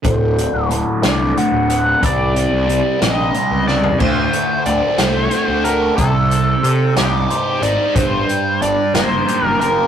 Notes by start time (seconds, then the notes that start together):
0.04 D1 D2 A2 D3 C5, kick, closed hi-hat
0.36 A2 D3, closed hi-hat
0.53 D1
0.69 D2 A2 D3, closed hi-hat
1.02 C2 D2 A2 D3 D5, snare, closed hi-hat
1.35 D2 A2 D3 F#5, closed hi-hat
1.52 D1
1.70 F#5, closed hi-hat
2.00 C2 C3 G3 C4, kick, closed hi-hat
2.05 D5
2.34 G3 C4, closed hi-hat
2.53 C2
2.67 C3 G3 C4, closed hi-hat
2.99 A#1 C3 G3 C4 D#5, snare, closed hi-hat
3.33 C3 G3 C4, closed hi-hat
3.51 C#2
3.67 D5, snare
3.83 floor tom
3.99 D2 C5, kick, crash
4.33 closed hi-hat
4.66 D2 C4 D5, closed hi-hat
4.98 C2 A3 C5, snare, closed hi-hat
5.31 F#4, closed hi-hat
5.48 D2
5.64 A3 A#4, closed hi-hat
5.97 C2 C3 A4, kick, closed hi-hat
6.31 closed hi-hat
6.63 C3 G4, closed hi-hat
6.95 C2 D#4 G4, snare, closed hi-hat
7.30 C5, closed hi-hat
7.62 G#1 D#4 D5, closed hi-hat
7.94 G1 G2 C5, kick, closed hi-hat
8.29 closed hi-hat
8.61 G1 D4 D5, closed hi-hat
8.94 F#1 A#3 C5, snare, closed hi-hat
9.28 G4, closed hi-hat
9.43 F#1 A#4
9.60 A#3 A#4, closed hi-hat